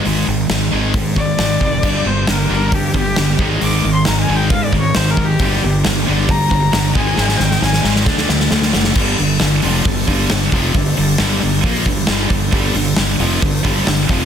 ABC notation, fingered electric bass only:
X:1
M:4/4
L:1/8
Q:1/4=135
K:Gphr
V:1 name="Fingered electric bass" clef=bass
A,,, A,,, A,,, A,,, A,, A,,, A,,, F,,, | G,,, G,,, G,,, G,,, G,, G,,, G,,, A,,, | A,,, A,,, A,,, A,,, A,, A,,, A,,, A,,, | G,,, G,,, G,,, G,,, G,, G,,, G,,, A,,, |
A,,, A,,, A,,, A,,, D,, D,, D,, ^F,,, | [K:Gm] G,,, G,,, G,,, F,,, G,,, G,,, G,,, F,,, | G,,, G,,, G,,, G,,, B,,, G,,, G,,, G,,, | G,,, G,,, G,,, F,,, G,,, G,,, G,,, F,,, |]